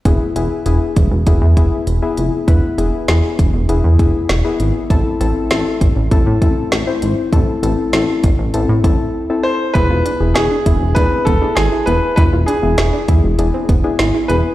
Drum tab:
HH |xxxxxxxx|xxxxxxxx|xxxxxxxx|xxxxxx--|
SD |--------|--o---o-|--o---o-|--o-----|
BD |o--ooo--|o--o-o--|o--ooo--|o--o-o--|

HH |xxxxxxxx|xxxxxxxx|
SD |--o---o-|--o---o-|
BD |o--ooo--|o--o-o--|